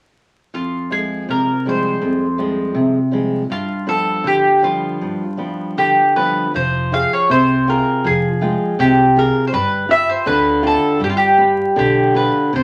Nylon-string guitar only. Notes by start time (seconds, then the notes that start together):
0.54 F2
0.90 F3 G#3
1.29 C3
1.66 F3 G3 G#3
2.01 F2
2.38 F3 G3 G#3
2.74 C3
3.12 F3 G3 G#3
3.50 G2
3.87 F3 G3 B3
4.24 D3
4.62 F3 G3 B3
5.02 G2
5.37 F3 G3 B3
5.77 D3
6.16 F3 G3 B3
6.54 F3
6.92 F4 G4 G#4
7.30 C3
7.67 F4 G#4 G5
8.04 F3
8.41 G#3 F4 G5
8.79 C3
9.16 F4 G4 G#4
9.52 G3
9.89 F4 G4 B4
10.26 D3
10.63 F4 G4 B4
11.00 G3
11.37 F4 G4 B4
11.76 D3
12.14 F4 G4 B4
12.53 C3